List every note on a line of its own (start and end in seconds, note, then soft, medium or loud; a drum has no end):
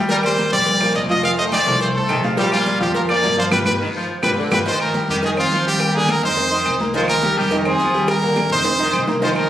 0.00 0.47 D#2 medium
0.09 0.21 G3 medium
0.09 0.52 G3 medium
0.09 0.21 G4 medium
0.09 0.17 A#4 loud
0.09 0.21 G5 medium
0.09 cowbell loud
0.09 high conga soft
0.09 low agogo medium
0.09 maracas medium
0.23 0.47 A#3 medium
0.23 0.47 A#4 medium
0.23 0.51 C5 loud
0.23 0.47 D5 medium
0.23 high conga soft
0.23 low agogo loud
0.23 claves medium
0.23 maracas soft
0.38 cowbell medium
0.38 high conga loud
0.38 short guiro medium
0.38 maracas medium
0.52 0.92 A#1 loud
0.52 0.75 G3 medium
0.52 0.76 G4 medium
0.52 0.92 D5 loud
0.52 0.76 G5 medium
0.52 high conga soft
0.52 short guiro medium
0.52 maracas soft
0.66 cowbell loud
0.66 high conga soft
0.66 low agogo medium
0.66 maracas medium
0.80 1.23 F3 medium
0.80 0.92 A#3 medium
0.80 0.92 A#4 medium
0.80 0.93 D5 medium
0.80 high conga soft
0.80 low agogo loud
0.80 claves medium
0.95 1.61 F1 medium
0.95 1.06 A#3 medium
0.95 1.07 A#4 medium
0.95 1.07 D5 medium
0.95 1.02 D#5 medium
0.95 cowbell medium
0.95 high conga soft
0.95 short guiro medium
0.95 maracas medium
1.09 1.33 F3 loud
1.09 1.33 F4 loud
1.09 1.23 D#5 loud
1.09 1.33 F5 loud
1.09 high conga medium
1.09 short guiro medium
1.09 maracas soft
1.23 1.31 F5 loud
1.23 cowbell loud
1.23 high conga soft
1.23 low agogo loud
1.23 long guiro medium
1.23 claves medium
1.23 maracas medium
1.38 1.61 A3 medium
1.38 1.61 A4 medium
1.38 1.61 C5 medium
1.38 1.45 D#5 loud
1.38 high conga soft
1.38 low agogo medium
1.38 maracas soft
1.52 1.60 D#3 medium
1.52 1.79 D5 loud
1.52 cowbell medium
1.52 high conga loud
1.52 low agogo loud
1.52 short guiro medium
1.52 claves medium
1.52 maracas medium
1.66 2.06 C2 medium
1.66 1.89 F3 medium
1.66 1.90 A3 medium
1.66 1.90 A4 medium
1.66 1.90 C5 medium
1.66 cowbell medium
1.66 high conga soft
1.66 short guiro medium
1.80 1.88 C5 medium
1.80 cowbell loud
1.80 high conga soft
1.80 low agogo medium
1.80 long guiro medium
1.80 maracas medium
1.95 2.18 A3 medium
1.95 2.19 A4 medium
1.95 2.22 A4 medium
1.95 2.19 C5 medium
1.95 high conga soft
1.95 maracas soft
2.09 2.75 A#1 medium
2.09 2.24 D#3 medium
2.09 cowbell medium
2.09 high conga soft
2.09 low agogo loud
2.09 short guiro medium
2.09 claves medium
2.09 maracas medium
2.23 2.35 F3 medium
2.23 2.35 F4 medium
2.23 2.36 F5 loud
2.23 high conga medium
2.23 short guiro medium
2.23 maracas soft
2.37 2.49 F3 medium
2.37 2.79 G3 loud
2.37 2.50 F4 medium
2.37 2.52 G4 loud
2.37 2.50 F5 medium
2.37 cowbell loud
2.37 high conga soft
2.37 low agogo medium
2.37 long guiro medium
2.37 maracas medium
2.52 2.76 A#3 medium
2.52 2.79 F4 loud
2.52 2.76 A#4 medium
2.52 2.76 D5 medium
2.52 high conga soft
2.52 low agogo loud
2.52 claves medium
2.52 maracas soft
2.66 cowbell medium
2.66 high conga loud
2.66 short guiro medium
2.66 maracas medium
2.80 3.20 F2 loud
2.80 3.04 F3 loud
2.80 3.04 F4 medium
2.80 2.94 G4 loud
2.80 3.04 F5 medium
2.80 high conga soft
2.80 short guiro medium
2.80 maracas soft
2.94 3.02 A#4 medium
2.94 cowbell loud
2.94 high conga soft
2.94 low agogo medium
2.94 long guiro medium
2.94 maracas medium
3.09 3.51 F3 medium
3.09 3.21 A#3 medium
3.09 3.21 A#4 medium
3.09 3.36 D5 loud
3.09 3.21 D5 medium
3.09 high conga soft
3.09 low agogo loud
3.09 claves medium
3.09 maracas soft
3.23 3.50 G2 loud
3.23 3.35 A#3 medium
3.23 3.35 A#4 medium
3.23 3.35 D5 medium
3.23 cowbell medium
3.23 high conga soft
3.23 low timbale medium
3.23 short guiro medium
3.23 maracas medium
3.37 3.49 F3 loud
3.37 3.49 F4 medium
3.37 3.45 C5 loud
3.37 3.50 F5 loud
3.37 short guiro medium
3.37 maracas soft
3.51 3.63 G1 loud
3.51 3.61 F4 loud
3.51 3.61 G4 loud
3.51 3.61 B4 loud
3.51 3.59 B4 loud
3.51 cowbell loud
3.51 high conga loud
3.51 high timbale medium
3.51 claves loud
3.51 maracas loud
3.65 3.77 G1 loud
3.65 3.75 F4 medium
3.65 3.75 G4 loud
3.65 3.75 B4 loud
3.65 3.73 B4 loud
3.65 cowbell loud
3.65 high conga loud
3.65 high timbale medium
3.65 claves loud
3.65 maracas loud
3.80 3.88 D#3 medium
3.95 4.17 F3 medium
4.22 4.34 G1 medium
4.22 4.32 F4 medium
4.22 4.32 G4 loud
4.22 4.32 B4 medium
4.22 4.30 B4 medium
4.22 cowbell loud
4.22 high conga loud
4.22 high timbale loud
4.22 long guiro loud
4.22 claves loud
4.22 maracas medium
4.37 4.52 D3 loud
4.51 4.62 G1 loud
4.51 4.61 F4 loud
4.51 4.61 G4 loud
4.51 4.61 B4 loud
4.51 4.59 B4 loud
4.51 cowbell loud
4.51 high conga loud
4.51 high timbale loud
4.51 long guiro loud
4.51 claves loud
4.51 maracas medium
4.65 4.89 D#3 medium
4.65 4.89 F3 medium
4.65 4.89 D#4 medium
4.65 4.80 C5 loud
4.65 4.89 D#5 medium
4.65 cowbell loud
4.65 high conga soft
4.65 low agogo medium
4.65 long guiro medium
4.65 maracas medium
4.80 5.07 A#4 loud
4.80 high conga soft
4.80 low agogo loud
4.80 claves medium
4.80 maracas soft
4.94 5.18 G3 medium
4.94 5.18 G4 medium
4.94 5.18 G5 medium
4.94 cowbell medium
4.94 high conga loud
4.94 short guiro medium
4.94 maracas medium
5.08 5.48 F2 medium
5.08 5.31 D#3 medium
5.08 5.16 G4 loud
5.08 high conga soft
5.08 short guiro medium
5.08 maracas soft
5.23 5.35 D#3 medium
5.23 5.35 D#4 medium
5.23 5.31 G#4 medium
5.23 5.35 D#5 medium
5.23 cowbell loud
5.23 high conga soft
5.23 low agogo loud
5.23 maracas medium
5.37 5.61 C4 medium
5.37 5.65 F4 loud
5.37 5.61 C5 medium
5.37 5.61 C6 medium
5.37 high conga soft
5.37 low agogo loud
5.37 claves medium
5.37 maracas soft
5.51 6.17 D#2 medium
5.51 5.74 F3 medium
5.51 cowbell medium
5.51 high conga soft
5.51 short guiro medium
5.51 maracas medium
5.66 5.89 G3 medium
5.66 5.90 G4 medium
5.66 5.97 G4 loud
5.66 5.90 G5 medium
5.66 short guiro medium
5.66 maracas soft
5.80 cowbell loud
5.80 high conga soft
5.80 low agogo loud
5.80 claves medium
5.80 maracas medium
5.94 6.26 D3 medium
5.94 6.18 A#3 medium
5.94 6.12 G#4 loud
5.94 6.18 A#4 medium
5.94 6.18 A#5 medium
5.94 high conga soft
5.94 low agogo medium
5.94 maracas soft
6.08 6.24 A#4 loud
6.08 cowbell medium
6.08 high conga loud
6.08 low agogo loud
6.08 short guiro medium
6.08 claves medium
6.08 maracas medium
6.23 6.63 F2 loud
6.23 6.35 D#4 medium
6.23 6.77 C5 loud
6.23 6.35 D#5 medium
6.23 6.35 D#6 medium
6.23 cowbell medium
6.23 high conga soft
6.23 short guiro medium
6.23 maracas soft
6.37 6.49 C4 medium
6.37 6.49 C5 medium
6.37 6.49 C6 medium
6.37 cowbell loud
6.37 high conga soft
6.37 low agogo medium
6.37 long guiro medium
6.37 maracas medium
6.51 6.74 D#3 medium
6.51 6.75 D#4 medium
6.51 6.75 D#5 medium
6.51 6.75 D#6 medium
6.51 high conga soft
6.65 7.31 C2 medium
6.65 cowbell medium
6.65 high conga soft
6.65 low agogo loud
6.65 short guiro medium
6.65 claves medium
6.65 maracas medium
6.80 6.92 A#3 medium
6.80 6.92 A#4 medium
6.80 6.92 A#5 medium
6.80 high conga medium
6.80 short guiro medium
6.80 maracas soft
6.94 7.18 D#3 medium
6.94 7.17 F3 loud
6.94 7.18 D#4 medium
6.94 7.02 C5 loud
6.94 7.18 D#5 medium
6.94 cowbell loud
6.94 high conga soft
6.94 low agogo medium
6.94 long guiro medium
6.94 maracas medium
7.08 7.39 A#4 loud
7.08 high conga soft
7.08 low agogo loud
7.08 claves medium
7.08 maracas soft
7.22 7.46 G3 medium
7.22 7.46 G4 medium
7.22 7.47 G5 medium
7.22 cowbell medium
7.22 high conga loud
7.22 short guiro medium
7.22 maracas medium
7.37 7.77 F2 loud
7.37 7.59 D#3 medium
7.37 7.58 G4 loud
7.37 high conga soft
7.37 short guiro medium
7.37 maracas soft
7.51 7.63 D#3 medium
7.51 7.63 D#4 loud
7.51 7.63 D#5 medium
7.51 cowbell loud
7.51 high conga soft
7.51 low agogo medium
7.51 long guiro medium
7.51 maracas medium
7.59 7.68 A#4 medium
7.65 7.89 C4 medium
7.65 8.09 G#4 medium
7.65 7.89 C5 medium
7.65 7.90 C6 medium
7.65 high conga soft
7.65 low agogo loud
7.65 claves medium
7.65 maracas soft
7.79 8.45 D#2 medium
7.79 8.03 F3 medium
7.79 cowbell medium
7.79 high conga soft
7.79 short guiro medium
7.79 maracas medium
7.94 8.17 G3 medium
7.94 8.18 G4 medium
7.94 8.18 G5 medium
7.94 short guiro medium
7.94 maracas soft
8.08 8.49 A#4 loud
8.08 cowbell loud
8.08 high bongo medium
8.08 high conga soft
8.08 low agogo loud
8.08 long guiro medium
8.08 claves medium
8.08 maracas medium
8.22 8.55 D3 medium
8.22 8.46 A#3 medium
8.22 8.46 A#4 medium
8.22 8.46 A#5 medium
8.22 high bongo medium
8.22 high conga soft
8.22 low agogo medium
8.22 maracas soft
8.36 cowbell medium
8.36 high bongo medium
8.36 high conga loud
8.36 low agogo loud
8.36 short guiro medium
8.36 claves medium
8.36 maracas medium
8.50 8.91 F2 loud
8.50 8.63 D#4 medium
8.50 9.04 C5 loud
8.50 8.63 D#5 medium
8.50 8.63 D#6 medium
8.50 cowbell medium
8.50 high conga soft
8.50 short guiro medium
8.50 maracas soft
8.65 8.77 C4 medium
8.65 8.77 C5 medium
8.65 8.77 C6 medium
8.65 cowbell loud
8.65 low bongo medium
8.65 high conga soft
8.65 low agogo loud
8.65 maracas medium
8.79 9.02 D#3 medium
8.79 9.03 D#4 medium
8.79 9.03 D#5 medium
8.79 9.03 D#6 medium
8.79 low bongo medium
8.79 high conga soft
8.93 9.49 C2 medium
8.93 cowbell medium
8.93 high conga soft
8.93 low agogo loud
8.93 short guiro medium
8.93 claves medium
8.93 maracas medium
9.07 9.19 A#3 medium
9.07 9.19 A#4 medium
9.07 9.20 A#5 medium
9.07 low bongo medium
9.07 high conga medium
9.07 short guiro medium
9.07 maracas soft
9.22 9.45 D#3 medium
9.22 9.44 F3 medium
9.22 9.45 D#4 medium
9.22 9.29 C5 loud
9.22 9.46 D#5 loud
9.22 cowbell loud
9.22 high conga soft
9.22 low agogo medium
9.22 long guiro medium
9.22 maracas medium
9.36 9.49 A#4 medium
9.36 high conga soft
9.36 low agogo loud
9.36 claves medium
9.36 maracas soft